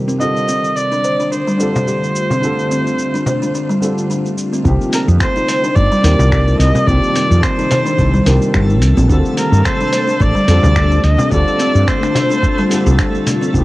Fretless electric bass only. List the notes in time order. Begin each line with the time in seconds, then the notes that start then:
4.65 C2
5.08 F2
5.76 G1
6.04 D#2
6.19 C2
6.59 C2
6.87 C2
7.31 F2
7.99 C2
8.26 C2
8.54 G1
8.82 C2
8.97 A#1
9.10 D2
9.52 G2
10.20 A1
10.48 F2
10.64 D2
11.04 D2
11.32 D2
11.75 G2
12.86 C2
13.54 C2